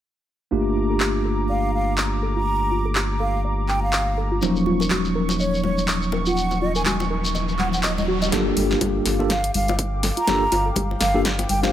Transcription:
0.51 G1 A3 A#3 D4 F4 G4 A#5 D6
0.76 F4
0.90 A4
1.00 G4, clap
1.25 A4
1.49 D5 F5
1.74 F5
1.98 clap
2.23 A4
2.36 F4 A#5
2.71 F4
2.85 A4
2.95 G4, clap
3.20 A4 F5
3.44 D5
3.68 G5, clap
3.83 F5
3.93 clap
4.18 A4
4.32 F4
4.41 D#1 F3 F#3 A#3 C#4 D#4 C#6, riser, high bongo, shekere
4.56 shekere
4.66 F4, high conga
4.80 A#4, high bongo, shekere
4.90 F#4, clap, high conga, shekere
5.04 shekere
5.15 A#4
5.29 high bongo, shekere
5.39 C#5 D#5, shekere
5.54 shekere
5.64 C#5, high bongo, high conga
5.78 shekere
5.88 clap, shekere
6.02 shekere
6.12 A#4, high bongo
6.26 F4 F#5, shekere
6.37 shekere
6.51 high bongo, shekere
6.62 F4 D#5
6.75 A#4 G#5, shekere
6.86 F#4 G#5, clap, high conga, shekere
7.00 high bongo, shekere
7.10 A#4
7.25 shekere
7.35 D#5, high bongo, shekere
7.49 shekere
7.59 F#5, clap, high conga
7.73 F#5, shekere
7.83 D#5, clap, high bongo, shekere
7.98 D#5, high conga, shekere
8.08 F#4
8.22 D#5, high bongo, shekere
8.32 G1 A#3 D4 F4 G4 A4, kick, snare, closed hi-hat, high bongo
8.57 G1 F4, open hi-hat, high conga
8.71 A4, snare
8.81 G1 G4, kick, closed hi-hat, high bongo, high conga
9.05 G1 A4, snare, open hi-hat
9.19 A#3 D4 F4 G4 A4, high bongo
9.30 D5 F5, kick, snare, closed hi-hat
9.44 closed hi-hat
9.54 G1 F5, open hi-hat, high conga
9.68 closed hi-hat, high bongo
9.79 kick, closed hi-hat
10.03 A4, snare, open hi-hat, high bongo
10.17 F4 A#5, closed hi-hat
10.27 G1 A#3 D4 F4 G4 A4, kick, snare, closed hi-hat
10.52 G1 F4, open hi-hat, high bongo
10.66 A4
10.76 G1 G4, kick, closed hi-hat, high conga
10.91 high bongo
11.01 G1 A4 F5, snare, open hi-hat
11.14 A#3 D4 F4 G4 A4
11.25 D5, kick, snare, closed hi-hat
11.39 closed hi-hat, high bongo
11.49 G1 G5, open hi-hat, high conga
11.63 A#3 D4 F4 G4 C5 F5, snare, closed hi-hat

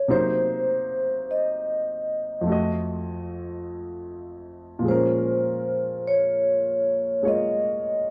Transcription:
Already playing: F4 C#5
0.08 C3 F#3 A#3 D#4 C5
1.31 D#5
2.41 F2 F3
2.46 A3 F#4
2.52 D#5
4.79 A#2 F3
4.85 G#3 C#4 C5
4.91 A#4
6.07 C#5
7.23 G#3 A#3 F4 C#5
7.28 D#5

